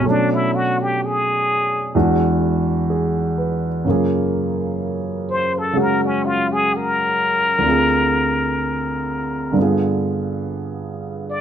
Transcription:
0.00 1.92 B2 soft
0.00 1.94 F#3 soft
0.00 0.11 C#4 medium
0.06 1.95 A3 soft
0.06 1.97 C#4 soft
0.10 0.35 D4 medium
0.10 1.94 D4 soft
0.34 0.57 E4 medium
0.55 0.83 F#4 medium
0.82 1.07 G4 medium
1.05 1.98 G#4 medium
1.95 3.85 E2 medium
1.95 3.85 E3 soft
1.95 3.85 G#3 soft
1.95 3.85 D4 soft
1.95 3.85 F#4 medium
2.90 3.66 G#4 soft
3.38 4.05 B4 soft
3.84 7.65 F#2 soft
3.84 5.72 C#3 soft
3.84 7.67 A#3 soft
3.89 7.65 F4 soft
3.89 7.68 G#4 soft
5.30 5.60 C5 medium
5.58 5.82 A4 medium
5.73 7.65 C#3 soft
5.73 7.65 G#3 soft
5.73 7.66 C#4 soft
5.73 7.66 F#4 soft
5.81 6.07 A#4 medium
6.06 6.27 C#4 medium
6.26 6.54 F4 medium
6.52 6.79 G#4 medium
6.77 9.60 A#4 medium
7.58 9.53 D2 soft
7.58 9.52 D3 soft
7.64 9.55 C4 soft
7.64 9.57 F4 soft
7.69 9.58 G#4 soft
9.52 11.41 G2 soft
9.52 11.41 D3 soft
9.57 11.41 B3 soft
9.57 11.41 F4 soft
9.62 11.41 G#4 soft
11.30 11.41 D5 medium

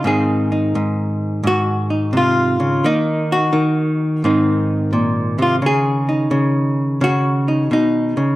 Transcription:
0.04 0.74 G#2 medium
0.04 2.83 D#3 soft
0.04 2.81 C4 soft
0.04 0.51 D#4 soft
0.04 1.45 G#4 medium
0.52 1.90 D#4 soft
0.75 1.42 G#2 medium
1.43 2.80 G#2 medium
1.43 2.15 F#4 medium
1.90 2.85 D#4 soft
2.13 2.59 C3 medium
2.17 2.85 F4 medium
2.60 2.83 C#3 medium
2.84 3.51 D#3 medium
2.84 4.20 A#3 soft
2.84 4.01 D#4 medium
3.32 5.40 F#4 medium
3.53 4.22 D#3 medium
4.24 5.60 G#2 medium
4.24 8.36 D#3 soft
4.24 5.60 C4 soft
4.24 5.60 D#4 soft
4.93 5.38 A#2 medium
5.38 5.62 C3 medium
5.38 5.55 F4 medium
5.62 6.30 C#3 medium
5.66 7.03 G#4 medium
6.09 7.47 D#4 soft
6.31 7.00 C#3 medium
7.01 7.70 C#3 medium
7.01 7.72 F#4 medium
7.48 7.71 D#4 soft
7.71 8.17 B2 medium
7.71 8.36 D#4 medium
8.17 8.36 C#3 medium

